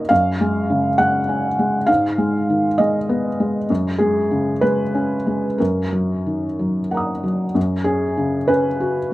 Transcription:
0.00 0.10 F#2 soft
0.00 0.13 F#3 soft
0.00 0.13 A#3 soft
0.00 0.13 D#4 soft
0.00 0.12 C#5 medium
0.00 0.13 D#5 medium
0.09 1.85 F#2 medium
0.09 0.99 F5 medium
0.41 0.88 G#3 soft
0.70 1.18 C#3 soft
0.98 1.47 G#3 soft
0.98 1.88 F#5 medium
1.29 1.76 C#4 soft
1.59 1.89 G#3 soft
1.87 3.65 G#2 medium
1.87 2.78 F5 medium
2.18 2.67 G#3 soft
2.50 2.98 D#3 soft
2.78 3.28 G#3 soft
2.78 3.69 D#5 medium
3.09 3.58 B3 soft
3.40 3.70 G#3 soft
3.70 5.55 F#2 soft
3.98 4.50 G#3 soft
3.98 4.62 G#4 medium
4.31 4.82 C#3 soft
4.61 5.14 G#3 soft
4.61 5.58 B4 medium
4.95 5.46 C#4 soft
5.27 5.59 G#3 soft
5.58 7.52 F#2 soft
5.58 7.23 A#4 soft
5.92 6.45 F#3 soft
6.26 6.78 D#3 soft
6.59 7.11 F#3 soft
6.91 7.43 A#3 soft
6.91 7.52 F#5 soft
6.91 7.53 A#5 soft
6.97 7.55 D#6 soft
7.23 7.56 F#3 soft
7.55 9.13 F#2 soft
7.84 8.36 C#4 soft
7.84 8.48 G#4 medium
8.17 8.67 C#3 soft
8.48 8.98 C#4 soft
8.48 9.13 B4 medium
8.80 9.13 F#4 soft

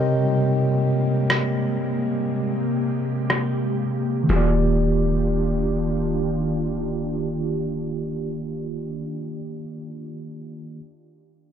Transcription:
0.00 0.27 C3 loud
0.00 3.74 C3 medium
0.00 4.25 C3 medium
0.00 1.75 G3 medium
0.00 4.25 G#3 medium
0.00 4.25 A#3 medium
0.00 3.75 C4 medium
0.00 3.76 G4 medium
0.00 3.77 A#4 medium
0.00 4.31 C#5 medium
0.00 3.77 D#5 medium
0.00 4.31 G5 medium
1.30 cross-stick loud
1.79 4.27 G4 medium
3.30 cross-stick loud
4.24 9.18 D#3 medium
4.24 9.21 A#3 medium
4.29 9.05 D#1 loud
4.29 9.05 D#3 medium
4.29 9.05 D4 medium
4.29 9.05 F4 medium
4.29 9.24 F4 medium
4.29 9.05 G4 medium
4.29 snare medium
4.29 open hi-hat medium
4.33 9.28 G4 medium
4.33 9.31 D5 medium

